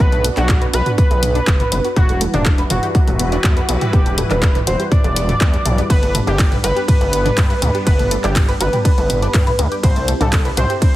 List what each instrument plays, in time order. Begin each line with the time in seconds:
Already playing: analog synth pad B3 D4 F#4
0.00 analog synth bass B1, analog synth lead B4
0.12 synth arpeggio sound A3 A4, closed hi-hat, mid tom
0.24 synth arpeggio sound A3 A4, closed hi-hat
0.37 analog synth bass B1, synth arpeggio sound D4 D5, analog synth lead F#4, clap, closed hi-hat
0.49 synth arpeggio sound D5 D6, kick, clap, closed hi-hat, mid tom
0.62 synth arpeggio sound B4 B5, closed hi-hat
0.73 analog synth bass B1, synth arpeggio sound F#4 F#5, analog synth lead B4, closed hi-hat
0.86 synth arpeggio sound F#4 F#5, closed hi-hat, mid tom
0.98 synth arpeggio sound D4 D5, analog synth lead B4, kick, closed hi-hat
1.11 analog synth bass B1, synth arpeggio sound A3 A4, closed hi-hat
1.23 synth arpeggio sound B3 B4, closed hi-hat, mid tom
1.35 synth arpeggio sound D4 D5, closed hi-hat
1.47 analog synth bass F#1, synth arpeggio sound D5 D6, kick, clap, closed hi-hat
1.60 synth arpeggio sound B4 B5, closed hi-hat, mid tom
1.72 analog synth bass F#1, synth arpeggio sound B3 B4, closed hi-hat
1.85 synth arpeggio sound F#4 F#5, closed hi-hat
1.96 analog synth bass E1, analog synth pad E3 G3 E4 F#4 B4, synth arpeggio sound B3 B4, analog synth lead F#4, kick, closed hi-hat, mid tom
2.09 synth arpeggio sound A3 A4, closed hi-hat
2.21 synth arpeggio sound A3 A4, closed hi-hat
2.34 analog synth bass E1, analog synth lead D4, synth arpeggio sound D4 D5, closed hi-hat, mid tom
2.46 synth arpeggio sound D5 D6, kick, clap, closed hi-hat
2.58 synth arpeggio sound B4 B5, closed hi-hat
2.70 analog synth bass E1, analog synth lead F#4, synth arpeggio sound F#4 F#5, closed hi-hat, mid tom
2.83 synth arpeggio sound G4 G5, closed hi-hat
2.95 synth arpeggio sound D4 D5, analog synth lead F#4, kick, closed hi-hat
3.08 analog synth bass E1, synth arpeggio sound A3 A4, closed hi-hat, mid tom
3.19 synth arpeggio sound B3 B4, closed hi-hat
3.32 synth arpeggio sound D4 D5, closed hi-hat
3.44 analog synth bass E2, synth arpeggio sound D5 D6, kick, clap, closed hi-hat, mid tom
3.57 synth arpeggio sound B4 B5, closed hi-hat
3.69 analog synth bass B1, synth arpeggio sound B3 B4, closed hi-hat
3.81 synth arpeggio sound G4 G5, closed hi-hat, mid tom
3.93 analog synth bass E1, synth arpeggio sound B3 B4, analog synth lead G4, kick, closed hi-hat
4.06 synth arpeggio sound A3 A4, closed hi-hat
4.18 synth arpeggio sound A3 A4, closed hi-hat, mid tom
4.30 analog synth bass E1, synth arpeggio sound D4 D5, analog synth lead B4, clap, closed hi-hat
4.42 synth arpeggio sound D5 D6, kick, clap, closed hi-hat
4.55 synth arpeggio sound B4 B5, closed hi-hat, mid tom
4.67 analog synth bass E1, synth arpeggio sound F#4 F#5, analog synth lead C5, closed hi-hat
4.80 synth arpeggio sound G4 G5, closed hi-hat
4.92 synth arpeggio sound D4 D5, analog synth lead D5, kick, closed hi-hat, mid tom
5.04 analog synth bass E1, synth arpeggio sound A3 A4, closed hi-hat
5.16 synth arpeggio sound B3 B4, closed hi-hat
5.29 synth arpeggio sound A3 A4, closed hi-hat, mid tom
5.41 analog synth bass E2, synth arpeggio sound B3 B4, kick, clap, closed hi-hat
5.53 synth arpeggio sound A3 A4, closed hi-hat
5.65 analog synth bass B1, synth arpeggio sound A3 A4, closed hi-hat, mid tom
5.78 synth arpeggio sound B3 B4, closed hi-hat
5.90 analog synth bass G1, synth arpeggio sound B3 B4, analog synth pad B3 D4, analog synth lead B4, kick, closed hi-hat, ride
6.03 synth arpeggio sound A3 A4, closed hi-hat
6.15 synth arpeggio sound A3 A4, closed hi-hat, mid tom
6.27 analog synth bass G1, synth arpeggio sound D4 D5, analog synth lead G4, closed hi-hat
6.39 synth arpeggio sound D5 D6, kick, clap, closed hi-hat, ride
6.52 synth arpeggio sound B4 B5, closed hi-hat, mid tom
6.64 analog synth bass G1, synth arpeggio sound F#4 F#5, analog synth lead B4, closed hi-hat
6.76 synth arpeggio sound G4 G5, closed hi-hat
6.88 synth arpeggio sound D4 D5, analog synth lead B4, kick, closed hi-hat, mid tom, ride
7.01 analog synth bass G1, synth arpeggio sound A3 A4, closed hi-hat
7.13 synth arpeggio sound B3 B4, closed hi-hat
7.25 synth arpeggio sound D4 D5, closed hi-hat, mid tom
7.37 analog synth bass G2, synth arpeggio sound B4 B5, kick, clap, closed hi-hat, ride
7.50 synth arpeggio sound B4 B5, closed hi-hat
7.62 analog synth bass D2, synth arpeggio sound B3 B4, closed hi-hat, mid tom
7.75 synth arpeggio sound G4 G5, closed hi-hat
7.87 analog synth bass G1, synth arpeggio sound B3 B4, analog synth lead B4, kick, closed hi-hat, ride
7.99 synth arpeggio sound A3 A4, closed hi-hat, mid tom
8.11 synth arpeggio sound A3 A4, closed hi-hat
8.24 analog synth bass G1, synth arpeggio sound D4 D5, analog synth lead G4, clap, closed hi-hat
8.36 synth arpeggio sound D5 D6, kick, clap, closed hi-hat, mid tom, ride
8.48 synth arpeggio sound B4 B5, closed hi-hat
8.60 analog synth bass G1, synth arpeggio sound F#4 F#5, analog synth lead B4, closed hi-hat
8.73 synth arpeggio sound G4 G5, closed hi-hat, mid tom
8.85 synth arpeggio sound D4 D5, analog synth lead B4, kick, closed hi-hat, ride
8.98 analog synth bass G1, synth arpeggio sound A3 A4, closed hi-hat
9.10 synth arpeggio sound B3 B4, closed hi-hat, mid tom
9.22 synth arpeggio sound D4 D5, closed hi-hat
9.34 analog synth bass G2, synth arpeggio sound B4 B5, kick, clap, closed hi-hat, ride
9.47 synth arpeggio sound B4 B5, closed hi-hat, mid tom
9.59 analog synth bass D2, synth arpeggio sound B3 B4, closed hi-hat
9.72 synth arpeggio sound G4 G5, closed hi-hat
9.83 analog synth bass C2, synth arpeggio sound B3 B4, analog synth pad C4 E4 G4, analog synth lead C5, kick, closed hi-hat, mid tom, ride
9.96 synth arpeggio sound A3 A4, closed hi-hat
10.08 synth arpeggio sound A3 A4, closed hi-hat
10.21 analog synth bass C2, synth arpeggio sound D4 D5, analog synth lead A4, closed hi-hat, mid tom
10.33 synth arpeggio sound D5, kick, clap, closed hi-hat, ride
10.45 synth arpeggio sound B4 B5, closed hi-hat
10.57 analog synth bass C2, synth arpeggio sound F#4 F#5, analog synth lead C5, closed hi-hat, mid tom
10.70 synth arpeggio sound G4 G5, closed hi-hat
10.82 synth arpeggio sound D4 D5, analog synth lead C5, kick, closed hi-hat, ride